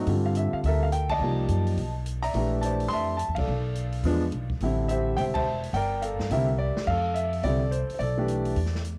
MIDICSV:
0, 0, Header, 1, 5, 480
1, 0, Start_track
1, 0, Key_signature, -1, "major"
1, 0, Tempo, 283286
1, 130, Time_signature, 4, 2, 24, 8
1, 15222, End_track
2, 0, Start_track
2, 0, Title_t, "Grand piano"
2, 0, Program_c, 0, 0
2, 131, Note_on_c, 0, 50, 57
2, 141, Note_on_c, 0, 55, 54
2, 148, Note_on_c, 0, 60, 52
2, 152, Note_on_c, 0, 65, 62
2, 435, Note_on_c, 0, 77, 71
2, 621, Note_off_c, 0, 77, 0
2, 627, Note_on_c, 0, 76, 75
2, 903, Note_on_c, 0, 77, 82
2, 923, Note_off_c, 0, 76, 0
2, 987, Note_off_c, 0, 77, 0
2, 1115, Note_on_c, 0, 76, 88
2, 1140, Note_on_c, 0, 70, 60
2, 1142, Note_on_c, 0, 69, 64
2, 1405, Note_on_c, 0, 77, 84
2, 1408, Note_off_c, 0, 76, 0
2, 1462, Note_off_c, 0, 50, 0
2, 1466, Note_off_c, 0, 55, 0
2, 1470, Note_off_c, 0, 60, 0
2, 1472, Note_off_c, 0, 65, 0
2, 1484, Note_off_c, 0, 77, 0
2, 1566, Note_on_c, 0, 79, 83
2, 1860, Note_on_c, 0, 81, 112
2, 1874, Note_off_c, 0, 79, 0
2, 1886, Note_on_c, 0, 74, 68
2, 1894, Note_on_c, 0, 75, 66
2, 2011, Note_off_c, 0, 70, 0
2, 2012, Note_off_c, 0, 69, 0
2, 2054, Note_on_c, 0, 53, 55
2, 2067, Note_on_c, 0, 58, 49
2, 2071, Note_on_c, 0, 63, 44
2, 2076, Note_on_c, 0, 67, 58
2, 2955, Note_off_c, 0, 74, 0
2, 3014, Note_off_c, 0, 53, 0
2, 3021, Note_off_c, 0, 58, 0
2, 3023, Note_off_c, 0, 63, 0
2, 3025, Note_off_c, 0, 67, 0
2, 3237, Note_off_c, 0, 81, 0
2, 3255, Note_off_c, 0, 75, 0
2, 3770, Note_on_c, 0, 82, 104
2, 3800, Note_on_c, 0, 76, 65
2, 3802, Note_on_c, 0, 74, 66
2, 3978, Note_on_c, 0, 52, 64
2, 3988, Note_on_c, 0, 57, 57
2, 3988, Note_on_c, 0, 62, 54
2, 4004, Note_on_c, 0, 67, 59
2, 4226, Note_off_c, 0, 82, 0
2, 4430, Note_on_c, 0, 81, 82
2, 4463, Note_off_c, 0, 74, 0
2, 4484, Note_on_c, 0, 72, 63
2, 4488, Note_on_c, 0, 74, 60
2, 4689, Note_off_c, 0, 76, 0
2, 4888, Note_off_c, 0, 81, 0
2, 4889, Note_on_c, 0, 84, 106
2, 4954, Note_on_c, 0, 76, 76
2, 4966, Note_on_c, 0, 81, 74
2, 5306, Note_off_c, 0, 52, 0
2, 5311, Note_off_c, 0, 62, 0
2, 5312, Note_off_c, 0, 57, 0
2, 5320, Note_off_c, 0, 67, 0
2, 5347, Note_off_c, 0, 81, 0
2, 5364, Note_off_c, 0, 72, 0
2, 5366, Note_off_c, 0, 74, 0
2, 5372, Note_on_c, 0, 81, 80
2, 5407, Note_off_c, 0, 84, 0
2, 5667, Note_off_c, 0, 81, 0
2, 5676, Note_on_c, 0, 77, 76
2, 5740, Note_on_c, 0, 74, 56
2, 5749, Note_on_c, 0, 69, 56
2, 5838, Note_off_c, 0, 76, 0
2, 6807, Note_off_c, 0, 69, 0
2, 6864, Note_on_c, 0, 53, 77
2, 6871, Note_on_c, 0, 56, 66
2, 6878, Note_on_c, 0, 59, 64
2, 6886, Note_on_c, 0, 62, 85
2, 7125, Note_off_c, 0, 53, 0
2, 7129, Note_off_c, 0, 56, 0
2, 7132, Note_off_c, 0, 59, 0
2, 7136, Note_off_c, 0, 62, 0
2, 7545, Note_off_c, 0, 77, 0
2, 7578, Note_off_c, 0, 74, 0
2, 7832, Note_on_c, 0, 50, 58
2, 7839, Note_on_c, 0, 55, 52
2, 7845, Note_on_c, 0, 60, 52
2, 7850, Note_on_c, 0, 64, 64
2, 8276, Note_on_c, 0, 76, 90
2, 8308, Note_on_c, 0, 72, 59
2, 8317, Note_on_c, 0, 67, 61
2, 8752, Note_on_c, 0, 79, 101
2, 8758, Note_off_c, 0, 76, 0
2, 8760, Note_off_c, 0, 72, 0
2, 8784, Note_on_c, 0, 76, 70
2, 8785, Note_on_c, 0, 72, 69
2, 8836, Note_off_c, 0, 79, 0
2, 9047, Note_on_c, 0, 81, 94
2, 9049, Note_off_c, 0, 76, 0
2, 9053, Note_off_c, 0, 72, 0
2, 9075, Note_on_c, 0, 76, 72
2, 9078, Note_on_c, 0, 72, 72
2, 9151, Note_off_c, 0, 50, 0
2, 9155, Note_off_c, 0, 55, 0
2, 9158, Note_off_c, 0, 60, 0
2, 9160, Note_off_c, 0, 64, 0
2, 9198, Note_off_c, 0, 67, 0
2, 9503, Note_off_c, 0, 81, 0
2, 9689, Note_off_c, 0, 76, 0
2, 9691, Note_off_c, 0, 72, 0
2, 9722, Note_on_c, 0, 79, 99
2, 9752, Note_on_c, 0, 74, 72
2, 9755, Note_on_c, 0, 70, 71
2, 10172, Note_off_c, 0, 79, 0
2, 10197, Note_on_c, 0, 77, 76
2, 10199, Note_off_c, 0, 70, 0
2, 10224, Note_on_c, 0, 70, 55
2, 10230, Note_on_c, 0, 69, 59
2, 10634, Note_off_c, 0, 74, 0
2, 10664, Note_off_c, 0, 70, 0
2, 10667, Note_off_c, 0, 69, 0
2, 10695, Note_on_c, 0, 50, 63
2, 10697, Note_on_c, 0, 55, 58
2, 10698, Note_off_c, 0, 77, 0
2, 10698, Note_on_c, 0, 76, 77
2, 10702, Note_on_c, 0, 67, 54
2, 10705, Note_on_c, 0, 60, 61
2, 10709, Note_on_c, 0, 70, 56
2, 10713, Note_on_c, 0, 64, 76
2, 10959, Note_off_c, 0, 50, 0
2, 10960, Note_off_c, 0, 55, 0
2, 10963, Note_off_c, 0, 60, 0
2, 10967, Note_off_c, 0, 64, 0
2, 11157, Note_on_c, 0, 74, 82
2, 11415, Note_off_c, 0, 76, 0
2, 11588, Note_off_c, 0, 67, 0
2, 11592, Note_off_c, 0, 70, 0
2, 11642, Note_on_c, 0, 77, 101
2, 11657, Note_off_c, 0, 74, 0
2, 11688, Note_on_c, 0, 69, 72
2, 12100, Note_on_c, 0, 76, 83
2, 12140, Note_off_c, 0, 77, 0
2, 12560, Note_off_c, 0, 76, 0
2, 12562, Note_off_c, 0, 69, 0
2, 12602, Note_on_c, 0, 74, 88
2, 12604, Note_on_c, 0, 50, 55
2, 12611, Note_on_c, 0, 55, 54
2, 12620, Note_on_c, 0, 60, 54
2, 12628, Note_on_c, 0, 64, 65
2, 12649, Note_on_c, 0, 69, 63
2, 12872, Note_off_c, 0, 50, 0
2, 12876, Note_off_c, 0, 55, 0
2, 12880, Note_off_c, 0, 60, 0
2, 12884, Note_off_c, 0, 64, 0
2, 13068, Note_on_c, 0, 72, 75
2, 13099, Note_off_c, 0, 74, 0
2, 13432, Note_off_c, 0, 72, 0
2, 13458, Note_on_c, 0, 72, 56
2, 13523, Note_off_c, 0, 69, 0
2, 13538, Note_on_c, 0, 74, 86
2, 13558, Note_off_c, 0, 72, 0
2, 13597, Note_on_c, 0, 69, 57
2, 13852, Note_on_c, 0, 52, 58
2, 13858, Note_on_c, 0, 57, 52
2, 13865, Note_on_c, 0, 62, 57
2, 13876, Note_on_c, 0, 67, 68
2, 14476, Note_off_c, 0, 69, 0
2, 14485, Note_off_c, 0, 52, 0
2, 14488, Note_off_c, 0, 57, 0
2, 14492, Note_off_c, 0, 62, 0
2, 14497, Note_off_c, 0, 67, 0
2, 14926, Note_off_c, 0, 74, 0
2, 15222, End_track
3, 0, Start_track
3, 0, Title_t, "Upright bass"
3, 0, Program_c, 1, 32
3, 115, Note_on_c, 1, 43, 85
3, 844, Note_off_c, 1, 43, 0
3, 1079, Note_on_c, 1, 38, 79
3, 1998, Note_off_c, 1, 38, 0
3, 2026, Note_on_c, 1, 36, 78
3, 2485, Note_off_c, 1, 36, 0
3, 2517, Note_on_c, 1, 42, 77
3, 2971, Note_off_c, 1, 42, 0
3, 2998, Note_on_c, 1, 35, 77
3, 3918, Note_off_c, 1, 35, 0
3, 3963, Note_on_c, 1, 34, 77
3, 4881, Note_off_c, 1, 34, 0
3, 4919, Note_on_c, 1, 41, 74
3, 5522, Note_off_c, 1, 41, 0
3, 5562, Note_on_c, 1, 40, 60
3, 5717, Note_off_c, 1, 40, 0
3, 5732, Note_on_c, 1, 36, 67
3, 5882, Note_off_c, 1, 36, 0
3, 5891, Note_on_c, 1, 35, 81
3, 6805, Note_off_c, 1, 35, 0
3, 6837, Note_on_c, 1, 40, 73
3, 7292, Note_off_c, 1, 40, 0
3, 7327, Note_on_c, 1, 35, 77
3, 7777, Note_off_c, 1, 35, 0
3, 7803, Note_on_c, 1, 33, 74
3, 8720, Note_off_c, 1, 33, 0
3, 8762, Note_on_c, 1, 28, 83
3, 9678, Note_off_c, 1, 28, 0
3, 9708, Note_on_c, 1, 31, 85
3, 10440, Note_off_c, 1, 31, 0
3, 10489, Note_on_c, 1, 43, 68
3, 10659, Note_off_c, 1, 43, 0
3, 10669, Note_on_c, 1, 36, 81
3, 11399, Note_off_c, 1, 36, 0
3, 11637, Note_on_c, 1, 41, 76
3, 12554, Note_off_c, 1, 41, 0
3, 12591, Note_on_c, 1, 36, 80
3, 13320, Note_off_c, 1, 36, 0
3, 13547, Note_on_c, 1, 35, 82
3, 14469, Note_off_c, 1, 35, 0
3, 14504, Note_on_c, 1, 40, 76
3, 15222, Note_off_c, 1, 40, 0
3, 15222, End_track
4, 0, Start_track
4, 0, Title_t, "Muted upright bass strokes"
4, 895, Note_on_c, 9, 29, 39
4, 1065, Note_off_c, 9, 29, 0
4, 11450, Note_on_c, 9, 29, 39
4, 11620, Note_off_c, 9, 29, 0
4, 13371, Note_on_c, 9, 29, 37
4, 13540, Note_off_c, 9, 29, 0
4, 15222, End_track
5, 0, Start_track
5, 0, Title_t, "Drums"
5, 111, Note_on_c, 9, 46, 43
5, 280, Note_off_c, 9, 46, 0
5, 591, Note_on_c, 9, 42, 50
5, 760, Note_off_c, 9, 42, 0
5, 1080, Note_on_c, 9, 46, 44
5, 1250, Note_off_c, 9, 46, 0
5, 1560, Note_on_c, 9, 42, 52
5, 1730, Note_off_c, 9, 42, 0
5, 1852, Note_on_c, 9, 51, 70
5, 1857, Note_on_c, 9, 36, 81
5, 2022, Note_off_c, 9, 51, 0
5, 2027, Note_off_c, 9, 36, 0
5, 2515, Note_on_c, 9, 42, 53
5, 2684, Note_off_c, 9, 42, 0
5, 2822, Note_on_c, 9, 46, 34
5, 2991, Note_off_c, 9, 46, 0
5, 3005, Note_on_c, 9, 46, 42
5, 3175, Note_off_c, 9, 46, 0
5, 3486, Note_on_c, 9, 42, 52
5, 3655, Note_off_c, 9, 42, 0
5, 3786, Note_on_c, 9, 46, 38
5, 3955, Note_off_c, 9, 46, 0
5, 3963, Note_on_c, 9, 46, 39
5, 4132, Note_off_c, 9, 46, 0
5, 4448, Note_on_c, 9, 42, 58
5, 4617, Note_off_c, 9, 42, 0
5, 4744, Note_on_c, 9, 46, 37
5, 4913, Note_off_c, 9, 46, 0
5, 4921, Note_on_c, 9, 46, 42
5, 5090, Note_off_c, 9, 46, 0
5, 5407, Note_on_c, 9, 42, 54
5, 5576, Note_off_c, 9, 42, 0
5, 5696, Note_on_c, 9, 51, 76
5, 5702, Note_on_c, 9, 36, 83
5, 5865, Note_off_c, 9, 51, 0
5, 5872, Note_off_c, 9, 36, 0
5, 6360, Note_on_c, 9, 42, 51
5, 6529, Note_off_c, 9, 42, 0
5, 6648, Note_on_c, 9, 46, 37
5, 6818, Note_off_c, 9, 46, 0
5, 6838, Note_on_c, 9, 46, 47
5, 7007, Note_off_c, 9, 46, 0
5, 7316, Note_on_c, 9, 42, 54
5, 7485, Note_off_c, 9, 42, 0
5, 7620, Note_on_c, 9, 36, 66
5, 7789, Note_off_c, 9, 36, 0
5, 7799, Note_on_c, 9, 46, 41
5, 7968, Note_off_c, 9, 46, 0
5, 8283, Note_on_c, 9, 42, 54
5, 8453, Note_off_c, 9, 42, 0
5, 8769, Note_on_c, 9, 46, 42
5, 8938, Note_off_c, 9, 46, 0
5, 9061, Note_on_c, 9, 51, 71
5, 9064, Note_on_c, 9, 36, 76
5, 9230, Note_off_c, 9, 51, 0
5, 9233, Note_off_c, 9, 36, 0
5, 9544, Note_on_c, 9, 46, 41
5, 9713, Note_off_c, 9, 46, 0
5, 9724, Note_on_c, 9, 46, 42
5, 9893, Note_off_c, 9, 46, 0
5, 10202, Note_on_c, 9, 42, 56
5, 10371, Note_off_c, 9, 42, 0
5, 10498, Note_on_c, 9, 38, 50
5, 10667, Note_off_c, 9, 38, 0
5, 10680, Note_on_c, 9, 46, 47
5, 10849, Note_off_c, 9, 46, 0
5, 11465, Note_on_c, 9, 38, 61
5, 11634, Note_off_c, 9, 38, 0
5, 11644, Note_on_c, 9, 36, 61
5, 11648, Note_on_c, 9, 49, 61
5, 11814, Note_off_c, 9, 36, 0
5, 11817, Note_off_c, 9, 49, 0
5, 12120, Note_on_c, 9, 42, 49
5, 12289, Note_off_c, 9, 42, 0
5, 12413, Note_on_c, 9, 46, 32
5, 12583, Note_off_c, 9, 46, 0
5, 12592, Note_on_c, 9, 46, 39
5, 12761, Note_off_c, 9, 46, 0
5, 13079, Note_on_c, 9, 42, 44
5, 13249, Note_off_c, 9, 42, 0
5, 13378, Note_on_c, 9, 46, 36
5, 13548, Note_off_c, 9, 46, 0
5, 13559, Note_on_c, 9, 46, 36
5, 13728, Note_off_c, 9, 46, 0
5, 14031, Note_on_c, 9, 42, 51
5, 14201, Note_off_c, 9, 42, 0
5, 14320, Note_on_c, 9, 46, 35
5, 14489, Note_off_c, 9, 46, 0
5, 14505, Note_on_c, 9, 46, 41
5, 14672, Note_on_c, 9, 38, 24
5, 14675, Note_off_c, 9, 46, 0
5, 14833, Note_off_c, 9, 38, 0
5, 14833, Note_on_c, 9, 38, 41
5, 14988, Note_on_c, 9, 42, 45
5, 15003, Note_off_c, 9, 38, 0
5, 15158, Note_off_c, 9, 42, 0
5, 15222, End_track
0, 0, End_of_file